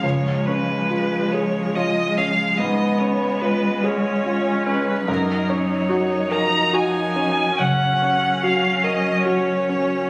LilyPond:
<<
  \new Staff \with { instrumentName = "Violin" } { \time 12/8 \key des \major \tempo 4. = 48 des''8 ces''4 des''8 ees''8 f''8 ees''8 des''8 ces''8 des''4 ces''8 | bes'8 des''4 bes''8 aes''4 ges''4 f''8 ees''8 des''4 | }
  \new Staff \with { instrumentName = "Grand piano" } { \time 12/8 \key des \major des,8 des'8 f'8 aes'8 f'8 des'8 aes,8 des'8 f'8 aes'8 f'8 des'8 | ges,8 des'8 ges'8 bes'8 ges'8 des'8 des8 des'8 ges'8 bes'8 ges'8 des'8 | }
  \new Staff \with { instrumentName = "Viola" } { \time 12/8 \key des \major aes2. ces'4. des'4. | ees'2. des'2. | }
  \new Staff \with { instrumentName = "Cello" } { \clef bass \time 12/8 \key des \major f2. aes2. | ges4. f4. ges2. | }
>>